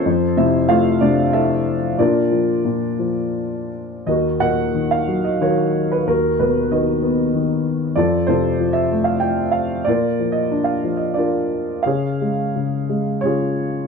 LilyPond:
<<
  \new Staff \with { instrumentName = "Grand piano" } { \time 3/4 \key bes \phrygian \tempo 4 = 92 << { c''8 fes''8 f''8 d''8 fes''4 | d''2~ d''8 r8 | ees''8 ges''8. f''8 ees''16 des''8. ces''16 | ais'8 b'8 dis''4. r8 |
d''8 c''8. fes''8 f''16 g''8 f''8 | d''8. ees''8 f''8 ees''16 d''8. r16 | f''2 des''4 | } \\ { <c' f' a'>8 fes'8 f'8 d'8 <fes' a'>4 | <d' f' bes'>2~ <d' f' bes'>8 r8 | <ges' bes'>8 <bes' ees''>4. <ges' bes'>4 | fis'4 <fis' b'>4. r8 |
<f' a'>8 <f' a'>4. r4 | <f' bes'>4. r8 <f' bes'>4 | <aes' des''>2 <f' aes'>4 | } >> }
  \new Staff \with { instrumentName = "Grand piano" } { \clef bass \time 3/4 \key bes \phrygian f,8 c8 a8 c4. | bes,8 f8 bes,8 f4. | ees,8 bes,8 ees8 ges8 ees4 | dis,8 b,8 dis8 b8 dis4 |
f,8 c8 f8 a8 f4 | bes,8 f8 d'8 f8 d'4 | des8 aes8 des8 aes8 des4 | }
>>